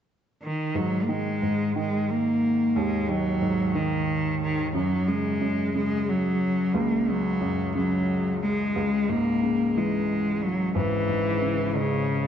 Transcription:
0.43 0.78 D#3 medium
0.75 1.41 G#2 soft
0.75 1.05 F#3 medium
1.03 1.12 A#3 soft
1.09 1.74 D#3 soft
1.09 1.76 G#3 medium
1.42 2.71 G#2 soft
1.76 3.05 D#3 soft
1.76 2.12 G#3 medium
2.10 2.78 A#3 medium
2.76 4.71 D#2 medium
2.76 3.11 G#3 medium
3.09 3.73 D#3 soft
3.09 3.77 F#3 medium
3.42 4.71 G#2 soft
3.75 4.72 D#3 soft
3.75 4.42 D#3 medium
4.43 4.73 D#3 medium
4.74 5.39 F#2 medium
4.74 5.10 F#3 medium
5.08 5.74 C#3 soft
5.08 5.75 G#3 medium
5.41 6.70 F#2 soft
5.75 7.04 C#3 soft
5.75 6.11 G#3 medium
6.09 6.78 F#3 medium
6.74 8.71 C#2 medium
6.74 7.11 A#3 medium
7.08 7.74 C#3 soft
7.08 7.76 F#3 medium
7.41 8.71 F#2 soft
7.75 8.73 C#3 soft
7.75 8.39 F#3 medium
8.43 9.12 G#3 medium
8.76 10.71 C#2 medium
9.09 10.38 G#2 soft
9.09 9.79 A#3 medium
9.43 10.71 C#3 soft
9.77 11.05 E3 soft
9.77 10.45 G#3 medium
10.44 10.76 F#3 medium
10.75 12.27 G#1 medium
10.75 11.78 E3 medium
11.09 12.27 G#2 soft
11.41 12.27 C#3 soft
11.75 12.27 C#3 medium
11.75 12.27 G#3 soft

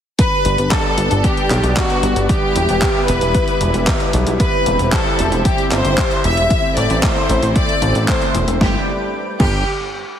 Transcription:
0.19 6.46 G3 medium
0.19 4.36 B3 medium
0.19 2.27 D4 medium
0.19 0.68 B4 loud
0.19 kick loud
0.19 closed hi-hat medium
0.45 0.57 G1 medium
0.45 closed hi-hat medium
0.58 0.70 G1 medium
0.58 closed hi-hat medium
0.71 1.24 A4 loud
0.71 kick loud
0.71 clap loud
0.71 closed hi-hat medium
0.98 1.09 G1 medium
0.98 closed hi-hat medium
1.11 1.22 G1 medium
1.11 closed hi-hat medium
1.24 1.77 G4 loud
1.24 kick loud
1.24 closed hi-hat medium
1.37 closed hi-hat soft
1.50 1.62 B1 medium
1.50 clap medium
1.50 closed hi-hat medium
1.63 1.75 B1 medium
1.63 closed hi-hat medium
1.76 2.25 F#4 medium
1.76 kick loud
1.76 clap loud
1.76 closed hi-hat medium
1.90 closed hi-hat soft
2.03 2.14 G1 medium
2.03 closed hi-hat medium
2.16 2.28 G1 medium
2.16 closed hi-hat medium
2.29 4.38 E4 medium
2.29 3.04 G4 loud
2.29 kick loud
2.29 closed hi-hat medium
2.56 2.67 E1 medium
2.56 closed hi-hat medium
2.69 2.80 E1 medium
2.69 closed hi-hat medium
2.82 kick loud
2.82 clap loud
2.82 closed hi-hat medium
3.08 3.20 E1 medium
3.08 4.13 B4 loud
3.08 closed hi-hat medium
3.21 3.33 E1 medium
3.21 closed hi-hat soft
3.34 kick loud
3.34 closed hi-hat medium
3.48 closed hi-hat soft
3.61 3.72 E1 medium
3.61 closed hi-hat medium
3.74 3.85 E1 medium
3.74 closed hi-hat soft
3.87 kick loud
3.87 clap loud
3.87 closed hi-hat medium
4.00 closed hi-hat soft
4.13 4.25 B1 medium
4.13 closed hi-hat medium
4.27 4.38 B1 medium
4.27 closed hi-hat medium
4.40 6.48 C4 medium
4.40 8.57 E4 medium
4.40 4.89 B4 loud
4.40 kick loud
4.40 closed hi-hat medium
4.66 4.78 E1 medium
4.66 closed hi-hat medium
4.79 4.91 E1 medium
4.79 closed hi-hat soft
4.92 5.45 A4 medium
4.92 kick loud
4.92 clap loud
4.92 closed hi-hat medium
5.19 5.30 E1 medium
5.19 closed hi-hat medium
5.32 5.43 E1 medium
5.32 closed hi-hat soft
5.45 5.70 G4 medium
5.45 kick loud
5.45 closed hi-hat medium
5.58 closed hi-hat soft
5.71 5.83 G1 medium
5.71 6.20 C5 loud
5.71 clap medium
5.71 closed hi-hat medium
5.85 5.96 G1 medium
5.85 closed hi-hat soft
5.98 kick loud
5.98 clap loud
5.98 closed hi-hat medium
6.11 closed hi-hat soft
6.24 6.35 E1 medium
6.24 6.73 E5 loud
6.24 closed hi-hat medium
6.37 6.49 E1 medium
6.37 closed hi-hat soft
6.50 8.59 A3 medium
6.50 8.59 C4 medium
6.50 kick loud
6.50 closed hi-hat medium
6.77 6.88 A1 medium
6.77 7.03 D5 loud
6.77 closed hi-hat medium
6.90 7.01 A1 medium
6.90 closed hi-hat soft
7.03 7.56 C5 medium
7.03 kick loud
7.03 clap loud
7.03 closed hi-hat medium
7.29 7.41 A1 loud
7.29 closed hi-hat medium
7.42 7.54 A1 medium
7.42 closed hi-hat soft
7.56 8.05 D5 loud
7.56 kick loud
7.56 closed hi-hat medium
7.69 closed hi-hat soft
7.82 7.93 A1 medium
7.82 closed hi-hat medium
7.95 8.07 A1 medium
7.95 closed hi-hat soft
8.08 8.48 C5 medium
8.08 kick loud
8.08 clap loud
8.08 closed hi-hat medium
8.22 closed hi-hat soft
8.35 8.46 E1 medium
8.35 closed hi-hat medium
8.48 8.59 E1 medium
8.48 closed hi-hat medium
8.61 8.76 G1 loud
8.61 8.85 G3 medium
8.61 8.85 D4 medium
8.61 8.76 G4 medium
8.61 8.85 B4 medium
8.61 8.85 G5 medium
8.61 8.85 D6 medium
8.61 kick loud
8.61 snare medium
9.40 9.64 G1 loud
9.40 9.64 G4 medium
9.40 kick loud
9.40 crash medium

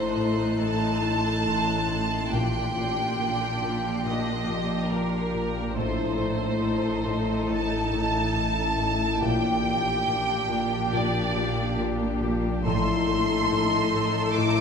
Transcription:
0.00 2.28 A1 medium
0.00 0.15 A2 soft
0.00 2.28 A2 soft
0.00 2.28 D#4 soft
0.00 2.28 A4 soft
0.00 0.56 C5 soft
0.00 5.30 C6 soft
0.00 4.45 F#6 soft
0.16 0.59 A2 soft
0.60 1.03 A2 soft
0.60 2.32 A5 soft
1.04 1.45 A2 soft
1.46 1.88 A2 soft
1.89 2.36 A2 soft
2.32 3.15 A#1 soft
2.32 5.77 A#1 medium
2.32 2.74 A#2 soft
2.32 5.77 A#2 soft
2.32 5.72 D4 soft
2.32 5.72 G4 soft
2.32 4.05 G5 soft
2.75 3.17 A#2 soft
3.19 3.60 A#2 soft
3.62 4.04 A#2 soft
4.05 4.47 A#2 soft
4.05 4.90 D#5 soft
4.48 4.89 A#2 soft
4.91 5.32 A#2 soft
4.91 5.77 A#4 soft
5.34 5.80 A#2 soft
5.76 6.59 A1 soft
5.76 9.22 A1 medium
5.76 6.18 A2 soft
5.76 9.18 A2 soft
5.76 9.17 D#4 soft
5.76 9.18 A4 soft
5.76 7.47 C5 soft
6.19 6.60 A2 soft
6.62 7.05 A2 soft
7.06 7.49 A2 soft
7.50 7.91 A2 soft
7.50 9.19 A5 soft
7.92 8.34 A2 soft
8.35 8.77 A2 soft
8.78 9.25 A2 soft
9.20 10.03 A#1 soft
9.20 12.66 A#1 medium
9.20 9.63 A#2 soft
9.20 12.62 A#2 soft
9.20 12.62 D4 soft
9.20 12.62 G4 soft
9.20 10.95 G5 medium
9.64 10.06 A#2 soft
10.07 10.48 A#2 soft
10.49 10.91 A#2 soft
10.93 11.35 A#2 soft
10.93 11.80 D5 soft
11.36 11.78 A#2 soft
11.79 12.21 A#2 soft
12.22 12.69 A#2 soft
12.65 13.47 A1 soft
12.65 14.61 A1 medium
12.65 13.08 A2 soft
12.65 14.61 A2 soft
12.65 14.61 D#4 soft
12.65 14.61 A4 soft
12.65 14.33 C6 medium
12.65 14.61 C6 soft
12.65 14.61 E6 soft
13.09 13.50 A2 soft
13.51 13.93 A2 soft
13.94 14.36 A2 soft
14.37 14.61 A2 soft
14.37 14.61 D6 medium

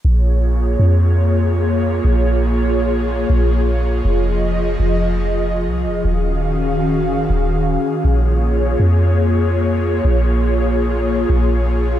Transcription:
0.04 0.77 A#1 loud
0.04 4.00 A#3 medium
0.04 6.00 F4 medium
0.04 6.00 G#4 medium
0.04 4.00 C#5 medium
0.79 2.00 F2 loud
2.04 3.25 A#1 loud
3.30 4.02 A#1 loud
4.04 4.77 F1 loud
4.04 6.03 F3 medium
4.04 6.02 D#5 medium
4.80 5.68 F1 loud
5.67 5.87 C2 loud
5.86 6.04 F1 loud
6.04 7.06 D#1 loud
6.04 8.02 D#3 medium
6.04 8.02 C#4 medium
6.04 8.02 F#4 medium
6.04 11.99 G#4 medium
6.04 8.02 F5 medium
7.05 7.19 F#1 loud
7.17 7.29 D#1 medium
7.30 7.78 D#1 loud
8.04 8.76 A#1 loud
8.04 11.99 A#3 medium
8.04 11.99 F4 medium
8.04 11.99 C#5 medium
8.79 10.00 F2 loud
10.05 11.26 A#1 loud
11.30 11.99 A#1 loud

